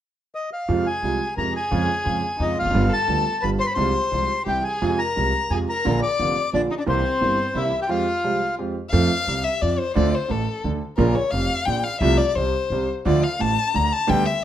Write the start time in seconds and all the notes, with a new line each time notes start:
0.35 D#5
0.53 F5
0.68 F2 C3 F3 G#3 F4
0.85 G#4 G#5
1.02 C2 C3 F3 G#3 F4
1.37 F2 C3 F3 G#3 F4 A#4 A#5
1.55 G#4 G#5
1.71 F2 C#3 F3 G#3 F4
2.05 F2 C#3 F3 G#3 F4
2.39 F2 C#3 F3 G#3 D#4 F4 D#5
2.56 F4 F5
2.61 E1 E2
2.65 F1 F2
2.71 F#1 G1 F#2 D3 G3
2.75 G2 B3 F4
2.89 A4
2.93 A5
3.08 D2 D3 G3 B3 F4
3.41 G1 G2 D3 G3 B3 F4 B4 B5
3.59 C5 C6
3.65 B4 B5
3.72 C5 C6
3.76 C2 C3 F3 G#3 F4
4.11 C2 C3 F3 G#3 F4
4.46 C2 C3 E3 G3 E4 G4 G5
4.64 G#4 G#5
4.82 F2 C3 F3 G#3 F4
4.98 A#4 A#5
5.16 C2 C3 F3 G#3 F4
5.50 F2 C3 F3 G#3 F4 G#4 G#5
5.69 A#4 A#5
5.85 A#1 A#2 D3 F3 A#3 F4
6.02 D5 D6
6.19 F1 F2 D3 F3 A#3 F4
6.53 A#1 A#2 D3 F3 A#3 D4 F4 D5
6.71 D#4 D#5
6.78 D4 D5
6.86 C2 C3 E3 A#3 C4 G4 C5
7.21 G1 G2 E3 A#3 C4 G4
7.55 C2 C3 E3 A#3 C4 E4 G4 E5
7.81 G4 G5
7.89 F2 F3 G#3 C4 F4 G4 F5
8.24 C2 C3 F3 G#3 C4 G4
8.58 F2 F3 G#3 C4 G4
8.90 F2 F3 A3 C4 A4 F5
9.27 C2 C3
9.44 E5
9.62 F2 F3 D5
9.79 C5
9.95 D2 D3 A3 C4 F4 D5
10.15 C5
10.29 A1 A2 A4
10.64 D2 D3
10.97 A#1 A#2 C#3 F3 A#3 F4 A#4
11.15 C#5
11.31 F1 F2 F5
11.66 A#1 A#2 G5
11.84 F5
12.01 C2 C3 F3 A3 F4 E5
12.18 D5
12.36 C2 C3 C5
12.70 C2 C3
13.05 D2 D3 F3 A3 F4 D5
13.24 F5
13.39 A1 A2 A5
13.74 D2 D3 A#5
13.93 A5
14.07 D2 D3 G3 B3 G4 G5
14.26 E5